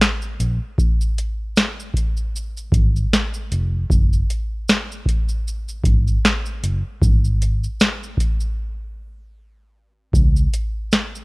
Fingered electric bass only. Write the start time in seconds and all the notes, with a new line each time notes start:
0.40 A#1
2.72 G#1
3.52 F1
3.90 F#1
5.84 G#1
6.63 F#1
7.02 G#1
10.14 C#2